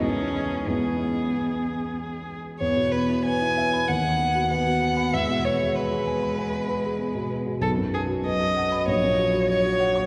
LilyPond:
<<
  \new Staff \with { instrumentName = "Violin" } { \time 4/4 \key e \major \tempo 4 = 96 gis'4 gis'2~ gis'8 r8 | cis''8 b'8 gis''4 fis''4 fis''4 | e''8 cis''8 b'2~ b'8 r8 | a'8 gis'8 dis''4 cis''4 cis''4 | }
  \new Staff \with { instrumentName = "Grand piano" } { \time 4/4 \key e \major <e, gis e' b'>4 <e, gis e' b'>2. | e,16 b,16 b16 e'16 b'16 e'16 e''16 b''16 dis,16 dis16 b16 fis'16 b'16 fis'16 fis''16 b''16 | e,16 b,16 b16 gis'16 b'16 gis'16 gis''16 b''16 gis''16 b''16 b'16 gis'16 b16 b,16 b16 b,16 | b,,16 fis,16 b16 fis'16 b'16 fis'16 fis''16 b''16 ais,,16 ais,16 fis16 fis'16 cis''16 fis'16 fis''16 cis'''16 | }
  \new Staff \with { instrumentName = "Cello" } { \time 4/4 \key e \major cis'4 b2 r4 | b4 b4 b4 b4 | gis4 gis2. | fis4 fis4 fis4 fis4 | }
>>